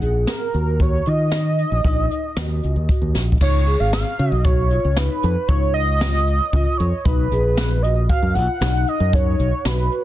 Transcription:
0.01 0.25 A#1 medium
0.01 0.34 G#4 medium
0.01 closed hi-hat medium
0.27 0.83 A#4 medium
0.27 snare loud
0.27 closed hi-hat medium
0.54 1.00 D#2 medium
0.54 0.70 F#4 medium
0.54 closed hi-hat soft
0.79 0.96 F#4 medium
0.79 1.10 C#5 medium
0.79 kick medium
0.79 closed hi-hat medium
1.05 1.63 D#3 medium
1.05 1.23 F4 medium
1.05 3.16 D#5 loud
1.05 closed hi-hat medium
1.32 1.65 D#4 medium
1.32 snare medium
1.32 closed hi-hat medium
1.58 closed hi-hat soft
1.72 1.83 A#1 medium
1.84 2.07 A#1 medium
1.84 2.17 D#4 medium
1.84 kick medium
1.84 closed hi-hat medium
2.11 closed hi-hat medium
2.37 2.59 D#2 medium
2.37 2.69 F#4 medium
2.37 snare loud
2.37 closed hi-hat medium
2.63 2.75 C#2 medium
2.63 closed hi-hat soft
2.76 2.87 D#2 medium
2.89 3.21 F#4 medium
2.89 kick medium
2.89 closed hi-hat medium
3.02 3.13 D#2 medium
3.15 3.38 A#1 medium
3.15 snare soft
3.32 kick medium
3.41 3.75 C#2 medium
3.41 3.57 D#4 medium
3.41 3.81 C#5 medium
3.41 kick loud
3.41 crash medium
3.67 3.99 G#4 medium
3.67 closed hi-hat medium
3.80 4.03 G#1 medium
3.80 3.93 F5 medium
3.93 4.32 F5 medium
3.93 snare loud
3.93 closed hi-hat medium
4.19 4.31 C#3 medium
4.19 4.35 F#4 medium
4.19 closed hi-hat medium
4.32 4.77 B1 medium
4.32 4.45 D#5 medium
4.44 4.61 F#4 medium
4.44 4.99 C#5 medium
4.44 kick loud
4.44 closed hi-hat medium
4.70 4.87 F4 medium
4.70 closed hi-hat medium
4.85 5.07 C#2 medium
4.96 5.29 D#4 medium
4.96 5.50 B4 medium
4.96 snare medium
4.96 closed hi-hat medium
5.23 5.35 F2 medium
5.23 closed hi-hat medium
5.48 6.39 C#2 medium
5.48 5.81 D#4 medium
5.48 5.73 C#5 medium
5.48 kick medium
5.48 closed hi-hat medium
5.74 6.79 D#5 loud
5.74 closed hi-hat medium
6.01 6.34 F4 medium
6.01 snare loud
6.01 closed hi-hat medium
6.27 closed hi-hat medium
6.53 6.65 C#2 medium
6.53 6.86 F4 medium
6.53 kick medium
6.53 closed hi-hat medium
6.77 6.91 F2 medium
6.77 7.06 C#5 medium
6.77 closed hi-hat medium
7.05 7.28 B1 medium
7.05 7.22 D#4 medium
7.05 7.84 B4 medium
7.05 kick loud
7.05 closed hi-hat medium
7.32 8.10 A#1 medium
7.32 7.64 G#4 medium
7.32 closed hi-hat medium
7.57 snare loud
7.57 closed hi-hat medium
7.82 8.00 F#4 medium
7.82 8.09 D#5 medium
7.82 closed hi-hat soft
8.09 8.26 F#4 medium
8.09 8.36 F5 medium
8.09 kick medium
8.09 closed hi-hat medium
8.23 8.37 F#2 medium
8.34 8.47 B1 medium
8.34 8.51 F4 medium
8.34 8.90 F#5 loud
8.34 closed hi-hat medium
8.61 8.84 B1 medium
8.61 8.94 D#4 medium
8.61 snare loud
8.61 closed hi-hat medium
8.87 9.15 D#5 loud
8.87 closed hi-hat medium
9.00 9.34 F#2 medium
9.13 9.46 D#4 medium
9.13 9.68 C#5 loud
9.13 kick loud
9.13 closed hi-hat medium
9.39 9.51 B1 medium
9.39 closed hi-hat medium
9.65 9.88 B1 medium
9.65 9.98 F#4 medium
9.65 10.04 B4 medium
9.65 snare loud
9.65 closed hi-hat medium
9.92 closed hi-hat soft

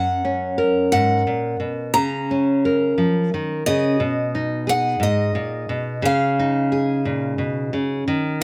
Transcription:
0.00 0.92 F#2 medium
0.00 0.24 C#4 medium
0.00 0.91 F#5 medium
0.25 1.90 C#4 soft
0.58 1.90 A#4 medium
0.92 1.26 G#2 medium
0.92 1.56 F#5 medium
1.27 1.59 A#2 medium
1.60 1.94 B2 medium
1.94 2.97 C#3 medium
1.94 3.66 A#5 medium
2.31 3.96 C#4 soft
2.65 3.96 A#4 medium
2.98 3.31 F3 medium
3.34 3.66 D#3 medium
3.66 4.00 C#3 medium
3.66 4.63 D#5 medium
4.00 4.99 B2 medium
4.35 6.05 D#4 medium
4.67 5.99 G#4 medium
4.67 5.03 F#5 medium
5.00 5.34 G#2 medium
5.00 6.05 D#5 medium
5.35 5.69 A#2 medium
5.69 6.03 B2 medium
6.02 7.72 C#3 medium
6.02 7.36 F5 medium
6.39 8.04 D#4 soft
6.72 8.03 G#4 medium
7.05 7.38 A#2 medium
7.38 7.73 B2 medium
7.73 8.07 C#3 medium
8.08 8.43 D#3 medium

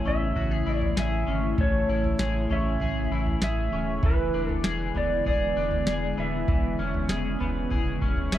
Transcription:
0.00 4.00 C#3 medium
0.00 4.00 E3 medium
0.00 1.57 A3 medium
0.00 3.99 A3 medium
0.00 0.66 E4 medium
0.00 8.38 E4 medium
0.00 0.36 G#4 medium
0.05 0.32 A1 medium
0.05 1.26 C#4 medium
0.05 0.74 E5 medium
0.05 floor tom medium
0.36 0.63 A1 loud
0.36 0.51 F#4 medium
0.36 kick medium
0.36 floor tom soft
0.51 0.95 G#4 medium
0.66 0.94 A1 medium
0.66 1.89 E4 medium
0.74 0.99 D5 medium
0.82 floor tom medium
0.97 1.24 A1 loud
0.97 2.19 G#4 medium
0.97 1.61 E5 medium
0.97 snare loud
1.28 1.55 G#1 medium
1.28 2.49 C#4 medium
1.58 1.85 A1 loud
1.58 4.03 A3 medium
1.58 2.54 C#5 medium
1.58 kick loud
1.58 floor tom medium
1.89 2.16 A1 medium
1.89 3.11 E4 medium
2.04 floor tom medium
2.19 2.47 A1 loud
2.19 2.81 G#4 medium
2.19 snare loud
2.50 2.77 A1 medium
2.50 3.72 C#4 medium
2.50 3.43 E5 medium
2.50 floor tom medium
2.80 3.08 A1 medium
2.80 3.42 G#4 medium
2.80 kick medium
2.80 floor tom medium
3.11 3.38 A1 medium
3.11 4.33 E4 soft
3.26 floor tom medium
3.42 3.69 A1 medium
3.42 4.37 G#4 medium
3.42 4.06 E5 medium
3.42 snare loud
3.72 4.00 D1 medium
3.72 4.09 C#4 medium
4.03 4.30 E1 loud
4.03 6.46 D3 medium
4.03 6.48 E3 medium
4.03 8.38 G#3 medium
4.03 8.38 B3 medium
4.03 4.49 B4 medium
4.03 kick loud
4.03 floor tom loud
4.34 4.61 E1 medium
4.34 5.55 D4 medium
4.49 4.62 A4 medium
4.49 floor tom medium
4.64 4.91 E1 loud
4.64 5.26 G#4 medium
4.64 snare loud
4.95 5.22 E1 medium
4.95 6.17 B3 medium
4.95 5.27 D5 medium
4.95 floor tom medium
5.25 5.53 E1 medium
5.25 5.87 G#4 medium
5.25 6.20 D5 medium
5.25 kick medium
5.25 floor tom soft
5.56 5.83 E1 medium
5.56 6.55 D4 medium
5.71 floor tom medium
5.87 6.14 E1 loud
5.87 7.09 G#4 medium
5.87 snare medium
6.18 6.45 D1 medium
6.18 6.82 B3 medium
6.18 8.29 E5 medium
6.48 6.75 E1 loud
6.48 8.38 C#3 medium
6.48 8.38 E3 medium
6.48 kick loud
6.48 floor tom loud
6.79 7.06 E1 medium
6.79 8.00 C#4 medium
6.94 floor tom medium
7.09 7.36 E1 loud
7.09 7.70 G#4 medium
7.09 snare medium
7.40 7.67 E1 loud
7.40 8.38 B3 medium
7.40 floor tom soft
7.71 7.98 E1 loud
7.71 8.31 G#4 medium
7.71 kick medium
7.71 floor tom soft
8.01 8.28 E1 medium
8.01 8.38 C#4 medium
8.01 kick medium
8.17 floor tom medium
8.32 8.38 E1 loud
8.32 8.38 G#4 medium
8.32 8.38 E5 medium
8.32 snare loud

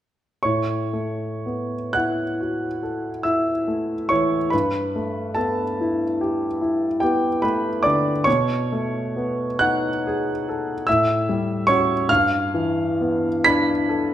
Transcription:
0.43 4.49 A2 soft
0.43 1.90 C#5 soft
0.43 1.94 C#6 medium
0.93 1.75 A3 soft
1.46 2.22 B3 soft
1.93 2.66 E4 soft
1.93 3.21 F#5 soft
1.93 3.24 F#6 medium
2.41 3.08 F#4 soft
2.83 3.51 A4 soft
3.23 3.94 E4 soft
3.23 4.06 E5 soft
3.23 4.10 E6 medium
3.68 4.36 A3 soft
4.09 4.53 E3 soft
4.09 4.49 C#5 soft
4.09 4.52 C#6 medium
4.50 8.23 G2 soft
4.50 5.32 B4 soft
4.50 5.35 B5 medium
4.96 5.62 A3 soft
5.35 6.04 B3 soft
5.35 6.98 A4 soft
5.35 7.01 A5 medium
5.80 6.46 E4 soft
6.21 6.86 G4 soft
6.61 7.27 E4 soft
7.00 7.69 B3 soft
7.00 7.40 G4 soft
7.00 7.42 G5 medium
7.42 8.10 A3 soft
7.42 7.82 B4 soft
7.42 7.84 B5 medium
7.83 8.27 D3 soft
7.83 8.23 D5 medium
7.83 8.26 D6 medium
8.24 10.83 B2 soft
8.24 9.57 C#5 medium
8.24 9.60 C#6 medium
8.72 9.44 A3 soft
9.16 9.88 B3 soft
9.59 10.30 D#4 soft
9.59 10.83 F#5 medium
9.59 10.86 F#6 medium
10.07 10.72 G#4 soft
10.49 10.88 A4 soft
10.87 12.07 A2 soft
10.87 11.65 E5 medium
10.87 11.68 E6 medium
11.29 11.94 G3 soft
11.67 12.06 C#4 soft
11.67 12.06 F#4 soft
11.67 12.06 C#5 medium
11.67 12.09 C#6 medium
12.09 14.14 G2 soft
12.09 13.41 F5 medium
12.09 13.45 F6 medium
12.54 13.28 E3 soft
13.01 13.71 B3 soft
13.44 14.12 D4 soft
13.44 14.14 B5 medium
13.44 14.14 B6 medium
13.89 14.14 A4 soft

